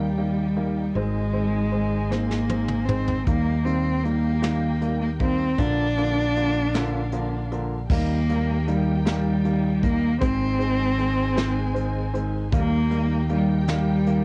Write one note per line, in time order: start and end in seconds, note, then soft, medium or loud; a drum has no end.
0.00 0.91 D#2 medium
0.00 0.96 G3 medium
0.00 5.54 D#4 medium
0.00 0.92 G4 medium
0.00 0.93 A#4 medium
0.00 0.92 G5 medium
0.17 0.44 D#3 medium
0.17 0.44 G3 medium
0.17 0.44 A#3 medium
0.56 0.83 D#3 medium
0.56 0.83 G3 medium
0.56 0.83 A#3 medium
0.94 3.23 G#1 medium
0.94 1.22 D#3 medium
0.94 2.11 G#3 medium
0.94 1.22 G#3 medium
0.94 1.22 C4 medium
0.94 3.24 G#4 medium
0.94 3.24 C5 medium
0.94 3.24 G#5 medium
1.33 1.59 D#3 medium
1.33 1.60 G#3 medium
1.33 1.60 C4 medium
1.71 1.98 D#3 medium
1.71 1.99 G#3 medium
1.71 1.98 C4 medium
2.10 2.37 D#3 medium
2.10 2.37 G#3 medium
2.10 2.87 A#3 medium
2.10 2.37 C4 medium
2.10 snare medium
2.31 snare medium
2.49 2.76 D#3 medium
2.49 2.76 G#3 medium
2.49 2.76 C4 medium
2.49 high tom medium
2.68 mid tom medium
2.85 3.15 D#3 medium
2.85 3.15 G#3 medium
2.85 3.26 C4 medium
2.85 3.15 C4 medium
2.85 mid tom medium
3.08 floor tom medium
3.24 5.54 D#2 medium
3.24 3.53 D#3 medium
3.24 3.53 G3 medium
3.24 3.66 A#3 medium
3.24 3.53 A#3 medium
3.24 7.87 A#4 medium
3.24 kick loud
3.24 closed hi-hat medium
3.29 5.57 G4 medium
3.29 5.57 G5 medium
3.65 3.92 D#3 medium
3.65 3.92 G3 medium
3.65 3.92 A#3 medium
3.65 4.06 C4 medium
3.65 closed hi-hat soft
4.04 4.31 D#3 medium
4.04 4.31 G3 medium
4.04 5.01 A#3 medium
4.04 4.31 A#3 medium
4.04 closed hi-hat soft
4.42 4.68 D#3 medium
4.42 4.68 G3 medium
4.42 4.69 A#3 loud
4.42 snare loud
4.42 closed hi-hat medium
4.80 5.07 D#3 medium
4.80 5.07 G3 medium
4.80 5.08 A#3 medium
4.80 closed hi-hat soft
5.01 5.10 A#3 medium
5.20 5.46 D#3 medium
5.20 5.46 G3 medium
5.20 5.46 A#3 medium
5.20 5.60 C4 medium
5.20 kick medium
5.20 closed hi-hat medium
5.57 7.86 A#1 medium
5.57 5.85 D3 medium
5.57 5.85 F3 medium
5.57 5.85 A#3 medium
5.57 7.87 D4 medium
5.57 7.51 D4 loud
5.57 7.87 F4 medium
5.57 7.87 F5 medium
5.57 kick loud
5.57 closed hi-hat medium
5.97 6.23 D3 medium
5.97 6.23 F3 medium
5.97 6.24 A#3 medium
5.97 closed hi-hat soft
6.36 6.62 D3 medium
6.36 6.62 F3 medium
6.36 6.62 A#3 medium
6.36 closed hi-hat soft
6.74 7.00 D3 medium
6.74 7.00 F3 medium
6.74 7.01 A#3 medium
6.74 snare loud
6.74 closed hi-hat medium
7.12 7.39 D3 medium
7.12 7.39 F3 medium
7.12 7.39 A#3 medium
7.12 closed hi-hat medium
7.51 7.78 D3 medium
7.51 7.78 F3 medium
7.51 7.78 A#3 medium
7.51 closed hi-hat medium
7.88 10.17 D#2 medium
7.88 8.16 D#3 medium
7.88 8.17 G3 medium
7.88 8.17 A#3 medium
7.88 14.24 D#4 medium
7.88 10.18 G4 medium
7.88 10.18 A#4 medium
7.88 10.18 G5 medium
7.88 kick loud
7.88 crash medium
7.92 8.69 A#3 medium
8.29 8.55 D#3 medium
8.29 8.55 G3 medium
8.29 8.55 A#3 medium
8.29 closed hi-hat medium
8.67 8.93 D#3 medium
8.67 8.94 G3 medium
8.67 9.06 G3 medium
8.67 8.93 A#3 medium
8.67 closed hi-hat soft
9.05 9.32 D#3 medium
9.05 9.32 G3 medium
9.05 9.84 G3 medium
9.05 9.32 A#3 loud
9.05 snare loud
9.05 closed hi-hat medium
9.44 9.70 D#3 medium
9.44 9.71 G3 medium
9.44 9.71 A#3 medium
9.44 closed hi-hat medium
9.82 10.09 D#3 medium
9.82 10.09 G3 medium
9.82 10.20 A#3 medium
9.82 10.09 A#3 medium
9.82 kick medium
9.82 closed hi-hat medium
10.20 12.49 G#1 medium
10.20 10.47 D#3 medium
10.20 10.47 G#3 medium
10.20 12.10 C4 loud
10.20 10.47 C4 loud
10.20 12.50 G#4 medium
10.20 12.50 C5 medium
10.20 12.50 G#5 medium
10.20 kick loud
10.20 closed hi-hat medium
10.59 10.86 D#3 medium
10.59 10.86 G#3 medium
10.59 10.86 C4 medium
10.59 closed hi-hat medium
10.98 11.24 D#3 medium
10.98 11.25 G#3 medium
10.98 11.25 C4 medium
10.98 closed hi-hat soft
11.35 11.63 D#3 medium
11.35 11.62 G#3 medium
11.35 11.63 C4 loud
11.35 snare loud
11.35 closed hi-hat medium
11.74 12.01 D#3 medium
11.74 12.01 G#3 medium
11.74 12.01 C4 medium
11.74 closed hi-hat medium
12.13 12.40 D#3 medium
12.13 12.40 G#3 medium
12.13 12.40 C4 medium
12.13 closed hi-hat medium
12.52 14.24 D#2 loud
12.52 12.79 D#3 medium
12.52 12.79 G3 medium
12.52 12.79 A#3 loud
12.52 13.27 A#3 loud
12.52 14.24 G4 medium
12.52 14.24 A#4 medium
12.52 14.24 G5 medium
12.52 kick loud
12.52 closed hi-hat medium
12.90 13.17 D#3 medium
12.90 13.17 G3 medium
12.90 13.17 A#3 medium
12.90 closed hi-hat medium
13.29 13.56 D#3 medium
13.29 13.56 G3 medium
13.29 13.68 G3 medium
13.29 13.56 A#3 medium
13.29 closed hi-hat soft
13.68 13.94 D#3 medium
13.68 13.95 G3 medium
13.68 14.24 G3 medium
13.68 13.95 A#3 loud
13.68 snare loud
13.68 closed hi-hat medium
14.06 14.24 D#3 medium
14.06 14.24 G3 medium
14.06 14.24 A#3 medium
14.06 closed hi-hat medium